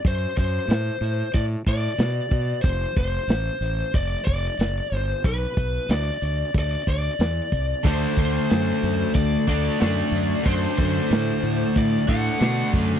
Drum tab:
HH |xxxxxxxx|xxxxxxxx|xxxxxxxx|xxxxxxxx|
SD |--o---o-|-oo---o-|--o---o-|--o---o-|
BD |oo--oo-o|oo--oo--|oo--oo-o|oo--oo--|

HH |xxxxxxxx|
SD |-oo---o-|
BD |oo--oo-o|